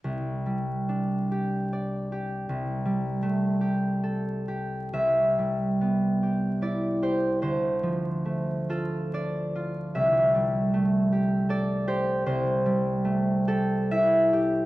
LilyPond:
\new Staff \with { instrumentName = "Harp" } { \time 3/4 \key c \major \tempo 4 = 74 << { r2. | r2. | e''2 d''8 c''8 | c''4. a'8 d''4 |
e''2 d''8 c''8 | c''4. a'8 e''4 | } \\ { c,8 g8 d'8 g'8 d''8 g'8 | c,8 g8 a8 g'8 a'8 g'8 | c,8 g8 b8 g'8 e'8 g'8 | d,8 f8 a8 f'8 d'8 f'8 |
c,8 g8 a8 g'8 a'8 g'8 | c,8 g8 a8 g'8 e'8 g'8 | } >> }